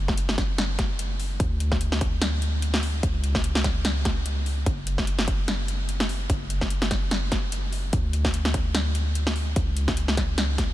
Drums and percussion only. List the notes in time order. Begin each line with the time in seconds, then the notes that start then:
0.08 kick, snare
0.17 closed hi-hat
0.29 snare
0.38 kick, snare, closed hi-hat
0.58 snare, closed hi-hat
0.79 kick, snare, closed hi-hat
0.99 closed hi-hat
1.20 open hi-hat
1.40 kick, closed hi-hat
1.60 closed hi-hat
1.72 kick, snare
1.81 closed hi-hat
1.92 snare
2.01 kick, closed hi-hat
2.22 snare, closed hi-hat
2.42 closed hi-hat
2.62 closed hi-hat
2.74 snare
2.83 open hi-hat
3.03 kick, closed hi-hat
3.24 closed hi-hat
3.35 kick, snare
3.44 closed hi-hat
3.55 snare
3.64 kick, snare, closed hi-hat
3.85 snare, closed hi-hat
4.05 kick, snare, closed hi-hat
4.26 closed hi-hat
4.46 open hi-hat
4.66 kick, closed hi-hat
4.87 closed hi-hat
4.98 kick, snare
5.07 closed hi-hat
5.19 snare
5.28 kick, closed hi-hat
5.48 snare, closed hi-hat
5.68 closed hi-hat
5.89 closed hi-hat
6.00 snare
6.09 open hi-hat
6.30 kick, closed hi-hat
6.50 closed hi-hat
6.61 kick, snare
6.70 closed hi-hat
6.82 snare
6.91 kick, snare, closed hi-hat
7.11 snare, closed hi-hat
7.32 kick, snare, closed hi-hat
7.52 closed hi-hat
7.73 open hi-hat
7.93 kick, closed hi-hat
8.13 closed hi-hat
8.25 kick, snare
8.34 closed hi-hat
8.45 snare
8.54 kick, closed hi-hat
8.75 snare, closed hi-hat
8.95 closed hi-hat
9.15 closed hi-hat
9.27 snare
9.36 open hi-hat
9.56 kick, closed hi-hat
9.77 closed hi-hat
9.88 kick, snare
9.97 closed hi-hat
10.08 snare
10.17 kick, snare, closed hi-hat
10.38 snare, closed hi-hat
10.58 kick, snare, closed hi-hat